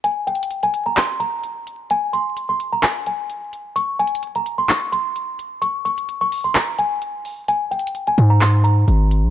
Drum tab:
HH |x-----x-x-x-x--x--x-----x-----x-----x-----x-----|x-----x-----x-----x-----x-----x-----x-----x-----|x-----x-x-x-x--x--x-----x-----x-----x-----x-----|x-----x--x--x-----o-----x-----x-----x-----o-----|
CP |------------------------x-----------------------|------------------------x-----------------------|------------------------x-----------------------|------------------------x-----------------------|

HH |x-----x-x-x-x--x--x-----x-----x-----x-----x-----|
CP |------------------------x-----------------------|